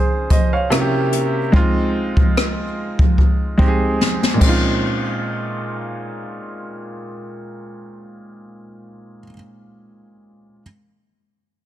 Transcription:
0.00 0.73 C#3 medium
0.00 0.73 C4 medium
0.00 0.73 D#4 medium
0.00 0.74 F4 medium
0.00 0.73 G#4 medium
0.00 0.28 C5 medium
0.30 0.52 C5 medium
0.30 0.52 D#5 medium
0.30 kick medium
0.30 closed hi-hat medium
0.53 0.92 C#5 medium
0.53 0.92 F5 medium
0.70 1.38 C3 medium
0.70 1.38 A#3 medium
0.70 1.39 C#4 medium
0.70 1.39 E4 medium
0.70 0.80 F#4 medium
0.70 cross-stick loud
0.70 closed hi-hat medium
0.81 1.43 G4 medium
1.12 closed hi-hat medium
1.52 2.63 G#3 medium
1.52 2.64 C4 medium
1.52 2.64 D#4 medium
1.52 2.65 F4 medium
1.52 kick loud
2.17 kick medium
2.37 cross-stick loud
2.99 kick loud
3.18 kick medium
3.58 4.35 G#3 medium
3.58 4.38 C4 medium
3.58 4.41 D#4 medium
3.58 3.67 G4 medium
3.58 kick medium
3.68 4.45 G#4 medium
4.01 snare medium
4.23 snare medium
4.34 9.20 A#2 medium
4.34 9.23 G#3 medium
4.40 9.26 C4 medium
4.40 9.29 C#4 medium
4.40 kick medium
4.40 crash medium
4.46 9.32 D#4 medium
4.46 9.35 F4 medium

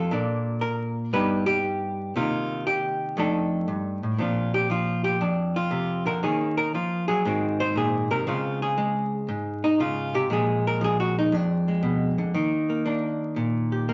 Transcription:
0.00 0.11 F2 medium
0.00 0.11 F4 medium
0.00 0.96 A4 medium
0.11 1.13 A#2 medium
0.11 1.11 A#3 soft
0.11 1.12 D4 soft
0.61 1.12 A#4 medium
1.13 2.13 G2 medium
1.13 2.13 G3 soft
1.13 2.13 B3 soft
1.13 2.14 D#4 soft
1.13 1.46 B4 medium
1.46 2.14 G4 loud
2.16 3.15 C3 medium
2.16 3.17 D#3 soft
2.16 3.15 A#3 soft
2.16 3.16 D#4 soft
2.16 2.66 F4 medium
2.67 3.17 G4 medium
3.17 3.67 F2 medium
3.17 4.17 A3 soft
3.17 4.17 D4 soft
3.17 4.17 D#4 soft
3.17 4.20 A4 medium
3.68 4.02 G2 medium
4.03 4.19 A2 medium
4.18 5.20 A#2 medium
4.18 4.68 F3 soft
4.18 6.21 C4 soft
4.18 5.20 D4 soft
4.18 4.54 F4 soft
4.54 4.70 G4 medium
4.70 6.20 F3 medium
4.70 5.04 F4 medium
5.04 5.20 G4 medium
5.21 6.22 F2 medium
5.21 5.55 D4 medium
5.56 6.06 F4 medium
5.71 6.05 C3 medium
6.06 6.22 D3 medium
6.06 6.22 A#4 medium
6.23 6.73 D#3 medium
6.23 7.23 A#3 soft
6.23 7.23 C#4 soft
6.23 6.57 G#4 medium
6.57 6.73 A#4 medium
6.74 7.08 F3 medium
6.74 7.07 F4 medium
7.08 7.24 F#3 medium
7.08 7.58 G#4 medium
7.25 8.24 G#2 medium
7.25 8.27 D#3 soft
7.25 8.25 C4 medium
7.25 8.25 F#4 soft
7.60 7.76 C5 loud
7.76 8.09 A#2 medium
7.76 8.10 G#4 medium
8.11 8.26 C3 medium
8.11 8.27 A#4 medium
8.27 9.28 C#3 medium
8.27 8.77 G#3 soft
8.27 10.29 C4 soft
8.27 8.61 F4 medium
8.62 9.12 G#4 medium
8.78 10.28 G#3 medium
9.29 10.28 G#2 medium
9.64 9.79 D#4 medium
9.80 10.14 C#3 medium
9.80 10.14 F4 medium
10.14 10.30 C3 medium
10.14 10.30 G4 medium
10.30 11.32 A#2 medium
10.30 10.80 F3 soft
10.30 11.67 G#3 soft
10.30 10.66 G#4 medium
10.67 10.82 A#4 medium
10.81 12.32 F3 medium
10.81 10.99 G#4 medium
11.00 11.16 F#4 medium
11.19 11.34 D#4 medium
11.32 12.34 F2 medium
11.32 12.85 D4 medium
11.68 12.35 G#3 soft
11.83 12.17 B2 medium
12.18 12.34 D3 medium
12.34 13.93 D#3 medium
12.34 12.69 A#3 soft
12.70 12.84 A#3 soft
12.86 13.87 A#3 medium
12.86 13.93 D4 soft
13.36 13.93 A#2 medium
13.72 13.93 G4 soft
13.89 13.93 A#3 medium

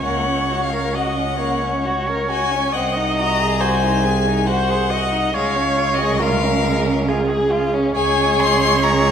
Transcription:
0.00 2.74 C#2 medium
0.00 0.97 C#5 medium
0.05 0.28 A#3 medium
0.05 0.65 F#5 medium
0.26 0.51 C#4 medium
0.49 0.73 F#4 medium
0.63 0.96 F5 medium
0.72 0.96 A#4 medium
0.95 1.20 F#4 medium
0.95 1.39 D#5 medium
0.95 1.85 F#5 medium
1.18 1.41 C#4 medium
1.39 1.65 A#3 medium
1.39 2.74 C#5 medium
1.63 1.87 C#4 medium
1.85 2.10 F#4 medium
2.09 2.32 A#4 medium
2.30 2.53 F#4 medium
2.30 2.75 G#5 medium
2.52 2.73 C#4 medium
2.72 5.36 C2 medium
2.72 2.97 C4 medium
2.72 3.62 D#5 medium
2.72 3.17 F#5 medium
2.96 3.22 D#4 medium
3.17 3.43 F#4 medium
3.17 3.63 A#5 medium
3.41 3.63 G#4 medium
3.60 3.86 F#4 medium
3.60 4.04 C5 medium
3.60 4.48 G#5 medium
3.85 4.06 D#4 medium
4.02 4.28 C4 medium
4.02 4.46 G#4 medium
4.27 4.49 D#4 medium
4.47 4.72 F#4 medium
4.47 4.92 C5 medium
4.47 5.34 F#5 medium
4.70 4.92 G#4 medium
4.90 5.14 F#4 medium
4.90 5.35 D#5 medium
5.12 5.33 D#4 medium
5.34 7.95 C#2 medium
5.34 5.58 G#3 medium
5.34 6.20 C#5 medium
5.34 5.96 F5 medium
5.56 5.79 C#4 medium
5.77 6.01 F4 medium
5.94 6.24 D#5 medium
6.00 6.22 G#4 medium
6.21 6.45 F4 medium
6.21 7.09 A#4 medium
6.21 7.10 F5 medium
6.44 6.67 C#4 medium
6.65 6.88 G#3 medium
6.86 7.09 C#4 medium
7.08 7.32 F4 medium
7.08 7.94 G#4 medium
7.30 7.53 G#4 medium
7.52 7.76 F4 medium
7.74 7.95 C#4 medium
7.95 9.12 C#2 medium
7.95 8.79 G#4 medium
7.95 9.12 C#5 medium
7.95 8.41 G#5 loud
8.40 8.85 C6 loud
8.83 9.12 G#4 medium
8.83 9.12 A#5 loud

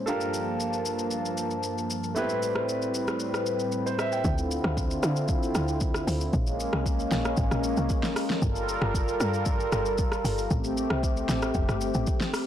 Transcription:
0.06 2.14 G2 medium
0.06 2.14 F3 medium
0.06 2.14 A#3 medium
0.06 2.12 D4 medium
0.06 2.12 F4 medium
0.06 2.13 G4 medium
0.06 2.11 A4 medium
0.06 2.13 A#4 medium
0.06 2.14 A5 medium
0.06 shaker medium
0.21 shaker medium
0.34 shaker medium
0.60 shaker medium
0.73 shaker soft
0.86 shaker medium
0.99 shaker medium
1.11 shaker medium
1.25 shaker medium
1.38 shaker medium
1.51 shaker soft
1.63 shaker medium
1.78 shaker medium
1.90 shaker medium
2.04 shaker soft
2.15 4.23 A2 medium
2.15 4.23 G3 medium
2.15 4.20 A3 medium
2.15 2.22 B3 medium
2.15 4.23 C4 medium
2.15 4.21 E4 medium
2.15 4.21 G4 medium
2.15 4.23 B4 medium
2.15 3.70 B4 medium
2.15 shaker medium
2.22 4.24 C4 medium
2.29 shaker medium
2.43 shaker medium
2.55 cross-stick medium
2.69 shaker medium
2.82 shaker soft
2.94 shaker medium
3.08 cross-stick medium
3.08 shaker medium
3.20 shaker medium
3.34 cross-stick medium
3.34 shaker soft
3.46 shaker medium
3.59 shaker soft
3.72 shaker medium
3.86 3.98 C5 medium
3.86 shaker medium
3.99 4.12 E5 medium
3.99 cross-stick loud
3.99 shaker medium
4.12 4.37 G5 medium
4.12 shaker soft
4.25 4.60 D2 loud
4.25 6.31 D3 medium
4.25 6.31 C4 medium
4.25 6.31 E4 medium
4.25 6.31 F4 medium
4.25 kick loud
4.25 shaker medium
4.38 shaker medium
4.51 shaker loud
4.64 4.99 D2 loud
4.64 cross-stick loud
4.77 kick medium
4.77 shaker medium
4.91 shaker medium
5.03 5.50 D3 loud
5.03 cross-stick loud
5.03 shaker loud
5.16 shaker medium
5.28 kick loud
5.28 shaker medium
5.43 shaker medium
5.55 6.02 D2 loud
5.55 cross-stick loud
5.55 shaker loud
5.68 shaker medium
5.81 kick loud
5.81 shaker medium
5.94 cross-stick medium
5.94 shaker medium
6.07 6.31 D2 medium
6.07 open hi-hat medium
6.07 shaker medium
6.21 shaker medium
6.33 6.69 A#1 loud
6.33 8.40 G#3 medium
6.33 8.40 A#3 medium
6.33 8.40 C#4 medium
6.33 kick loud
6.33 shaker medium
6.47 shaker medium
6.60 shaker loud
6.73 7.08 C2 medium
6.73 cross-stick loud
6.86 kick medium
6.86 shaker medium
6.99 shaker medium
7.12 7.35 A#1 loud
7.12 snare medium
7.12 shaker loud
7.25 cross-stick loud
7.25 shaker medium
7.37 7.50 G#1 loud
7.37 kick loud
7.37 shaker medium
7.51 7.75 A#1 loud
7.51 cross-stick medium
7.51 shaker medium
7.64 shaker loud
7.77 7.89 C2 loud
7.77 shaker medium
7.89 kick loud
7.89 shaker medium
8.03 snare medium
8.03 shaker medium
8.16 cross-stick loud
8.16 open hi-hat medium
8.16 shaker loud
8.30 snare medium
8.30 shaker medium
8.42 8.78 G1 loud
8.42 10.49 G3 medium
8.42 10.49 F4 medium
8.42 10.49 A4 medium
8.42 10.49 A#4 loud
8.42 kick loud
8.42 shaker medium
8.56 shaker medium
8.69 shaker loud
8.82 9.16 G1 loud
8.82 cross-stick loud
8.95 kick medium
8.95 shaker medium
9.08 shaker medium
9.20 9.67 G2 loud
9.20 cross-stick loud
9.20 shaker loud
9.34 shaker medium
9.46 kick loud
9.46 shaker medium
9.60 shaker medium
9.72 10.19 G1 medium
9.72 cross-stick loud
9.72 shaker loud
9.86 shaker medium
9.98 kick loud
9.98 shaker medium
10.12 cross-stick medium
10.12 shaker medium
10.25 10.48 G1 loud
10.25 open hi-hat medium
10.25 shaker medium
10.38 shaker medium
10.51 10.86 A1 loud
10.51 12.47 A3 medium
10.51 12.47 C4 medium
10.51 12.47 G4 medium
10.51 kick loud
10.51 shaker medium
10.64 shaker medium
10.77 shaker medium
10.90 11.25 C2 medium
10.90 cross-stick loud
11.03 kick medium
11.03 shaker medium
11.17 shaker medium
11.29 11.52 A1 medium
11.29 snare medium
11.29 shaker loud
11.42 cross-stick loud
11.42 shaker medium
11.54 11.67 F1 loud
11.54 kick loud
11.54 shaker medium
11.69 11.92 G1 loud
11.69 cross-stick medium
11.69 shaker medium
11.81 shaker loud
11.94 12.06 A1 medium
11.94 shaker medium
12.07 kick loud
12.07 shaker medium
12.21 snare medium
12.21 shaker medium
12.34 cross-stick loud
12.34 open hi-hat medium
12.34 shaker medium

